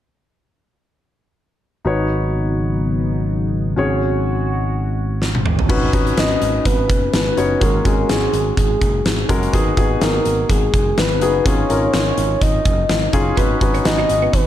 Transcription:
1.85 G#1 C#3 F#3 B3 D#4 F#4 B4 C#5
3.76 G#1 G#3 C#4 F#4 G#4 C#5
5.22 snare
5.35 high tom
5.46 mid tom
5.59 floor tom
5.69 G#1 C#4 D#4 F#4 B4, kick, crash
5.93 G#1 C#4 D#4 F#4 B4, kick, closed hi-hat
6.07 closed hi-hat
6.17 G#1 D#5, snare, closed hi-hat
6.41 G#1, closed hi-hat
6.65 G#1 B4, kick, closed hi-hat
6.89 F#1, kick, closed hi-hat
7.13 G#1 B4, snare, closed hi-hat
7.37 F#1 C#4 D#4 F#4 C#5, closed hi-hat
7.61 G#1 G#3 C#4 F#4 G#4 A#4, kick, closed hi-hat
7.85 G#1 G#3 C#4 F#4 G#4, kick, closed hi-hat
8.09 G#1 G#4, snare, closed hi-hat
8.33 G#1, closed hi-hat
8.57 G#1 G#4, kick, closed hi-hat
8.82 F#1, kick, closed hi-hat
9.05 G#1, snare, closed hi-hat
9.29 F#1 G#3 C#4 F#4 A#4, kick, closed hi-hat
9.43 closed hi-hat
9.53 G#1 B3 D#4 F#4 G#4, kick, closed hi-hat
9.77 G#1 B3 D#4 F#4 G#4, kick, closed hi-hat
10.01 G#1 A#4, snare, closed hi-hat
10.26 G#1, closed hi-hat
10.50 G#1 G#4, kick, closed hi-hat
10.74 F#1, kick, closed hi-hat
10.98 G#1 B4, snare, closed hi-hat
11.21 F#1 B3 D#4 F#4 G#4, closed hi-hat
11.45 G#1 C#4 D#4 F4 G#4 C#5, kick, closed hi-hat
11.69 G#1 C#4 D#4 F4 A#4, closed hi-hat
11.93 G#1 C#5, snare, closed hi-hat
12.18 G#1, closed hi-hat
12.41 G#1 D#5, kick, closed hi-hat
12.65 F#1, kick, closed hi-hat
12.89 G#1, snare, closed hi-hat
13.13 F#1 C#4 D#4 F4 G#4, kick, closed hi-hat
13.37 G#1 B3 C#4 D#4 F#4 B4, kick, closed hi-hat
13.61 G#1 C#4 D#4 F#4 B4, muted clean electric guitar stroke, kick, closed hi-hat
13.74 C#4, closed hi-hat
13.85 G#1 D#5, snare, closed hi-hat
13.99 D#4
14.09 G#1, muted clean electric guitar stroke, closed hi-hat
14.22 B3
14.33 G#1 B4, kick, closed hi-hat

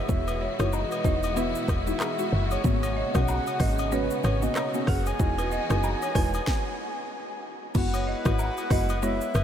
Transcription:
Already playing: B2 E3 G#3 F#4 E5
0.09 E1 G#3 B3 E4 F#4, kick, shaker
0.28 B4, high agogo, shaker
0.41 C#5
0.59 F#1 G#3 D#4 E4 F#4 C#5, cross-stick, high agogo, shaker
0.73 D#5, low woodblock, shaker
0.91 B4, high agogo, shaker
1.04 E1 G#3 D#4 E4 F#4 D#5, kick, shaker
1.23 high agogo, shaker
1.36 G#3 B3 E4 F#4 B4 E5, shaker
1.55 shaker
1.68 E1 E5, kick, cross-stick, high agogo, shaker
1.87 G#3 D#4 E4 F#4, shaker
2.00 G#4, cross-stick, clap, high agogo, low woodblock, shaker
2.19 G#3 D#4 E4 F#4, shaker
2.32 F#1
2.51 C#5, high agogo, shaker
2.64 G#1 C#3 A#3 B3 C#4 F#4, kick, shaker
2.83 C#5, high agogo, shaker
2.97 D#5
3.14 B1 A#3 B3 C#4 F#4 F#5, kick, cross-stick, high agogo, shaker
3.28 F#5, low woodblock, shaker
3.47 high agogo, shaker
3.60 G#1 A#3 B3 C#4 F#4 D#5, kick, cross-stick, open hi-hat, shaker
3.78 D#5, high agogo, shaker
3.92 G#3 B3 C#4 F#4 B4 C#5, shaker
4.11 shaker
4.24 G#1 B4 C#5, cross-stick, high agogo, shaker
4.42 A#3 B3 C#4 F#4 D#5, shaker
4.56 C#5, cross-stick, clap, high agogo, low woodblock, shaker
4.74 A#3 B3 C#4 F#4, shaker
4.87 F#1 G#4 F#5, kick, cross-stick, open hi-hat
5.06 G#5, high agogo, shaker
5.19 E1 E3 G#3 B3 D#4 E4 F#4 D#5, kick, shaker
5.38 B4, high agogo, shaker
5.51 D#5, shaker
5.70 F#1 G#3 D#4 E4 F#4, cross-stick, high agogo, shaker
5.83 low woodblock, shaker
6.02 C#5, high agogo, shaker
6.15 E1 G#3 D#4 E4 F#4 B4, kick, cross-stick, open hi-hat, shaker
6.34 high agogo, shaker
6.47 kick, snare
7.75 F#1 G#3 B3 E4 F#4 B4 F#5, kick, crash, shaker
7.94 C#5, high agogo, shaker
8.07 D#5
8.25 G#1 G#3 B3 E4 F#4, kick, cross-stick, high agogo, shaker
8.39 E5 F#5, low woodblock, shaker
8.57 high agogo, shaker
8.70 F#1 G#3 B3 E4 F#4 D#5, kick, cross-stick, open hi-hat, shaker
8.89 high agogo, shaker
9.02 G#3 B3 E4 F#4 C#5 E5, shaker
9.21 shaker
9.34 F#1 B4, cross-stick, high agogo, shaker

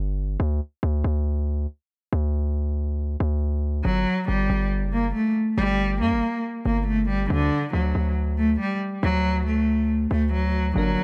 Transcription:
Already playing: G1
0.40 D2
0.83 D2
1.04 D2
2.13 D2
3.20 D2
3.85 G1 F#3
4.28 G1 G3
4.50 G1
4.82 F#1
4.93 A#3
5.15 A3
5.58 G1 G3
6.01 G2 A#3
6.11 G1
6.65 G1 A#3
6.87 A3
7.09 G3
7.30 D2 D3
7.73 D2 F#3
7.95 D2
8.38 A3
8.60 G3
9.03 D2 F#3
9.46 A3
10.11 D2 A3
10.33 F#3
10.74 G1 D3 F#3 A#3 D4
10.78 A#4

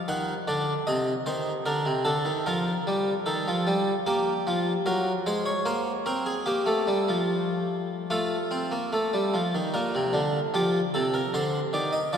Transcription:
0.08 D#3 F#5
0.48 D3 D5
0.87 C3 D#5
1.26 D#3 C5
1.66 D3 A#4
1.85 C3
2.05 D3 A4
2.25 D#3
2.46 F3 A#4
2.87 G3
3.26 D#3 A4
3.48 F3
3.67 G3
4.06 A#3 G4
4.47 F3
4.86 F#3 A#4
5.26 G#3 C5
5.46 C#5
5.65 A#3 C5
6.06 C4 A#4
6.26 G#4
6.46 A#3 G4
6.66 A3
6.87 G3
7.08 F3
8.10 A3 F4
8.51 C4
8.71 A#3
8.93 A3
9.14 G3
9.34 F3
9.55 D#3
9.74 A#2 A#4
9.95 C3
10.13 D3
10.54 F3 G4
10.94 C3 A4
11.14 A#4
11.34 D3 C5
11.73 D#3 D5
11.93 D#5
12.13 F3 D5

